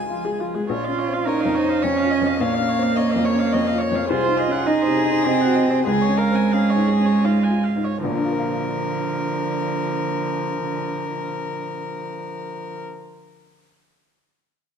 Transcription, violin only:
0, 0, Header, 1, 2, 480
1, 0, Start_track
1, 0, Key_signature, -5, "minor"
1, 0, Tempo, 589971
1, 554, Time_signature, 3, 2, 24, 8
1, 1026, Tempo, 567644
1, 3906, Tempo, 600000
1, 4866, Tempo, 657895
1, 5346, Tempo, 714286
1, 5826, Tempo, 786370
1, 6306, Tempo, 798935
1, 10361, End_track
2, 0, Start_track
2, 0, Title_t, "Violin"
2, 0, Program_c, 0, 40
2, 0, Note_on_c, 0, 80, 73
2, 316, Note_off_c, 0, 80, 0
2, 1025, Note_on_c, 0, 70, 69
2, 1279, Note_on_c, 0, 72, 77
2, 1291, Note_off_c, 0, 70, 0
2, 1501, Note_on_c, 0, 73, 76
2, 1513, Note_off_c, 0, 72, 0
2, 1744, Note_on_c, 0, 75, 75
2, 1756, Note_off_c, 0, 73, 0
2, 1997, Note_on_c, 0, 77, 89
2, 2010, Note_off_c, 0, 75, 0
2, 2461, Note_on_c, 0, 75, 77
2, 2474, Note_off_c, 0, 77, 0
2, 2703, Note_on_c, 0, 73, 80
2, 2716, Note_off_c, 0, 75, 0
2, 2940, Note_on_c, 0, 75, 82
2, 2953, Note_off_c, 0, 73, 0
2, 3159, Note_on_c, 0, 73, 86
2, 3172, Note_off_c, 0, 75, 0
2, 3416, Note_on_c, 0, 72, 99
2, 3429, Note_off_c, 0, 73, 0
2, 3654, Note_on_c, 0, 68, 103
2, 3667, Note_off_c, 0, 72, 0
2, 4848, Note_off_c, 0, 68, 0
2, 4853, Note_on_c, 0, 68, 98
2, 5090, Note_on_c, 0, 70, 97
2, 5101, Note_off_c, 0, 68, 0
2, 5352, Note_on_c, 0, 68, 87
2, 5362, Note_off_c, 0, 70, 0
2, 5832, Note_on_c, 0, 65, 72
2, 5842, Note_off_c, 0, 68, 0
2, 6065, Note_off_c, 0, 65, 0
2, 6314, Note_on_c, 0, 70, 74
2, 9179, Note_off_c, 0, 70, 0
2, 10361, End_track
0, 0, End_of_file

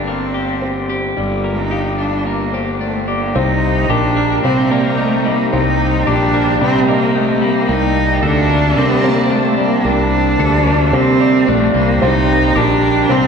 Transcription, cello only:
0, 0, Header, 1, 2, 480
1, 0, Start_track
1, 0, Tempo, 542986
1, 1033, Time_signature, 4, 2, 24, 8
1, 11732, End_track
2, 0, Start_track
2, 0, Title_t, "Cello"
2, 0, Program_c, 0, 42
2, 59, Note_on_c, 0, 60, 56
2, 752, Note_off_c, 0, 60, 0
2, 1060, Note_on_c, 0, 55, 55
2, 1406, Note_on_c, 0, 63, 62
2, 1419, Note_off_c, 0, 55, 0
2, 1747, Note_off_c, 0, 63, 0
2, 1752, Note_on_c, 0, 62, 61
2, 1987, Note_on_c, 0, 58, 54
2, 2000, Note_off_c, 0, 62, 0
2, 2475, Note_off_c, 0, 58, 0
2, 2481, Note_on_c, 0, 57, 52
2, 2705, Note_off_c, 0, 57, 0
2, 2722, Note_on_c, 0, 58, 55
2, 2967, Note_on_c, 0, 63, 67
2, 2981, Note_off_c, 0, 58, 0
2, 3440, Note_on_c, 0, 62, 75
2, 3453, Note_off_c, 0, 63, 0
2, 3920, Note_off_c, 0, 62, 0
2, 3925, Note_on_c, 0, 60, 71
2, 4165, Note_on_c, 0, 58, 71
2, 4178, Note_off_c, 0, 60, 0
2, 4418, Note_on_c, 0, 57, 71
2, 4431, Note_off_c, 0, 58, 0
2, 4657, Note_on_c, 0, 58, 69
2, 4670, Note_off_c, 0, 57, 0
2, 4888, Note_off_c, 0, 58, 0
2, 4893, Note_on_c, 0, 63, 73
2, 5368, Note_on_c, 0, 62, 79
2, 5381, Note_off_c, 0, 63, 0
2, 5844, Note_off_c, 0, 62, 0
2, 5866, Note_on_c, 0, 60, 77
2, 6077, Note_off_c, 0, 60, 0
2, 6096, Note_on_c, 0, 58, 74
2, 6338, Note_on_c, 0, 57, 72
2, 6351, Note_off_c, 0, 58, 0
2, 6576, Note_on_c, 0, 58, 72
2, 6589, Note_off_c, 0, 57, 0
2, 6824, Note_on_c, 0, 63, 78
2, 6837, Note_off_c, 0, 58, 0
2, 7286, Note_off_c, 0, 63, 0
2, 7292, Note_on_c, 0, 62, 85
2, 7766, Note_on_c, 0, 60, 79
2, 7780, Note_off_c, 0, 62, 0
2, 8021, Note_on_c, 0, 58, 77
2, 8034, Note_off_c, 0, 60, 0
2, 8248, Note_on_c, 0, 57, 74
2, 8262, Note_off_c, 0, 58, 0
2, 8480, Note_off_c, 0, 57, 0
2, 8489, Note_on_c, 0, 58, 79
2, 8736, Note_on_c, 0, 62, 80
2, 8749, Note_off_c, 0, 58, 0
2, 9668, Note_on_c, 0, 60, 80
2, 9682, Note_off_c, 0, 62, 0
2, 10153, Note_on_c, 0, 57, 72
2, 10167, Note_off_c, 0, 60, 0
2, 10384, Note_off_c, 0, 57, 0
2, 10389, Note_on_c, 0, 58, 75
2, 10644, Note_on_c, 0, 63, 85
2, 10657, Note_off_c, 0, 58, 0
2, 11110, Note_on_c, 0, 62, 85
2, 11123, Note_off_c, 0, 63, 0
2, 11585, Note_on_c, 0, 60, 80
2, 11599, Note_off_c, 0, 62, 0
2, 11732, Note_off_c, 0, 60, 0
2, 11732, End_track
0, 0, End_of_file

